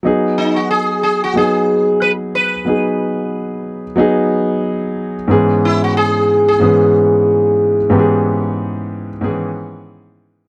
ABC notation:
X:1
M:4/4
L:1/16
Q:"Swing 16ths" 1/4=92
K:G#m
V:1 name="Sitar"
z2 D F G2 G F G4 B2 B2- | B8- B2 z6 | z2 E F G3 G8- G- | G12 z4 |]
V:2 name="Grand piano"
[F,B,DG]6- [F,B,DG] z [F,B,DG]6- [F,B,DG] z | [F,B,DG]6- [F,B,DG] z [F,B,DG]6- [F,B,DG] z | [G,,E,B,CG]6- [G,,E,B,CG] z [G,,E,B,CG]6- [G,,E,B,CG] z | [G,,E,B,C=G^G]6- [G,,E,B,C=G^G] z [G,,D,E,B,CG]6- [G,,D,E,B,CG] z |]